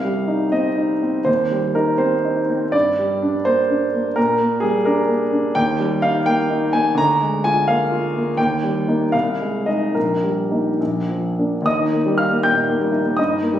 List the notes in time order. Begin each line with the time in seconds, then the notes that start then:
Already playing: C2 F5
0.05 G3
0.28 D#4
0.52 C4 D#5
0.77 D#4
1.02 C4
1.25 D#2 C5
1.51 G3
1.75 D#4 A#4
1.98 C4 C5
2.25 D#4
2.50 C4
2.72 G2 D5
2.99 G3
3.22 D4
3.45 A#3 C5
3.70 D4
3.93 A#3
4.16 A#2 A#4
4.41 A#3
4.60 G3 G#4
4.85 D4 A#4
5.08 A#3
5.32 D4
5.55 D#2 G5
5.80 G3
6.02 D#4 F5
6.26 A#3 G5
6.50 D#4
6.73 A#3 G#5
6.95 D2 A#5
7.21 G#3
7.44 F4 G#5
7.68 A#3 F5
7.91 F4
8.16 A#3
8.37 D#2 G5
8.63 G3
8.88 A#3 D#4
9.12 C2 F5
9.40 G#3
9.66 G#3 D#4 D#5
9.95 A#1 A#4
10.23 G3
10.51 A#3 D#4
10.81 A#1
11.09 F3
11.39 A#3 D4
11.62 D#2 D#6
11.67 D#5
11.80 D#4
11.93 A#3
12.06 G3
12.18 D#4 F5 F6
12.31 A#3
12.43 A#2 G5 G6
12.57 D#4
12.69 A#3
12.80 G3
12.93 D#4
13.05 A#3
13.17 G2 D#5 D#6
13.30 D#4
13.42 A#3
13.53 G3